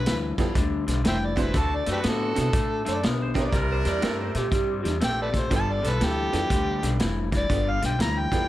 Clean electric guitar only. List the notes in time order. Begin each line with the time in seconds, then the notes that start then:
0.07 G2 E3
0.38 G2 E3
0.55 G2 D3
0.87 G2 D3
1.04 G2 E3
1.36 G2 E3
1.54 D3 A3
1.86 D3 A3
2.03 D3 B3
2.36 D3 B3
2.54 D3 A3
2.85 D3 A3
3.03 D3 B3
3.35 D3 B3
3.53 C3 G3
3.85 C3 G3
4.02 C3 A3
4.35 C3 A3
4.51 C3 G3
4.83 C3 G3
5.00 C3 A3
5.32 C3 A3
5.50 G2 D3
5.82 G2 D3
6.01 G2 E3
6.33 G2 E3
6.51 G2 D3
6.83 G2 D3
6.99 G2 E3
7.32 G2 E3
7.49 G2 D3
7.82 G2 D3
7.99 G2 E3
8.31 G2 E3